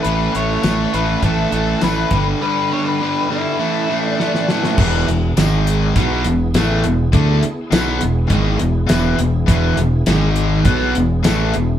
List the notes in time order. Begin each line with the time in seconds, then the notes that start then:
0.03 A1 A2 E3 A3 C#4 E4 B4, closed hi-hat
0.34 A1 A2 E3 A3 C#4 E4 C#5, closed hi-hat
0.62 A1 A2 E3 A3 C#4 E4, snare, closed hi-hat, tambourine
0.92 A1 A2 E3 A3 C#4 E4 B4, closed hi-hat
1.22 A1 A2 E3 A3 C#4 E4 A4, kick, closed hi-hat
1.51 A1 A2 E3 A3 C#4 E4 A4, closed hi-hat
1.81 A1 A2 E3 A3 C#4 E4 B4, snare, closed hi-hat, tambourine
2.11 G1 G2 D3 G3 B3 D4, kick, closed hi-hat
2.42 G2 D3 G3 B3 D4 B4
2.71 G2 D3 G3 B3 D4 C#5
2.85 B4
3.00 G2 D3 G3 B3 D4
3.30 G2 D3 G3 B3 D4 E4
3.59 A2 E3 A3 C#4 E4
3.89 A2 E3 A3 C#4 E4
4.10 D4
4.19 A2 E3 A3 C#4 E4, snare
4.35 snare
4.47 A2 E3 A3 B3 C#4 E4, snare
4.52 C4
4.56 D4 E4
4.61 F4 G4, snare
4.67 A4 B4
4.72 C5 D5
4.77 E1 E2 B2 E3 B3 E4 G#4, kick, crash
5.08 E1 E2 B2, closed hi-hat
5.37 G#1 G#2 D#3 G#3 D#4 G#4, snare, closed hi-hat, tambourine
5.67 closed hi-hat
5.95 B1 B2 F#3 B3 E4 G#4, kick, closed hi-hat
6.24 E1 E2 B2, closed hi-hat
6.54 A1 A2 E3 A3, snare, closed hi-hat, tambourine
6.84 E1 E2 B2, closed hi-hat
7.13 D2 D3 A3 D4, kick, closed hi-hat
7.43 muted overdriven electric guitar stroke, muted fingered electric bass stroke, closed hi-hat
7.72 B1 B2 F#3 B3, snare, closed hi-hat, tambourine
8.01 E1 E2 B2, closed hi-hat
8.30 G#1 G#2 D#3 G#3 B3 E4 G#4, kick, closed hi-hat
8.59 E1 E2 B2, closed hi-hat
8.89 E1 E2 B2 E3, snare, closed hi-hat, tambourine
9.18 E1 E2 B2, closed hi-hat
9.48 E1 E2 B2 E3, kick, closed hi-hat
9.77 E1 E2 B2, closed hi-hat
10.06 G#1 G#2 D#3 G#3 D#4 G#4, snare, closed hi-hat, tambourine
10.36 closed hi-hat
10.65 B1 B2 F#3 B3 E4 G#4, kick, closed hi-hat
10.95 E1 E2 B2, closed hi-hat
11.24 A1 A2 E3 A3, snare, closed hi-hat, tambourine
11.54 E1 E2 B2, closed hi-hat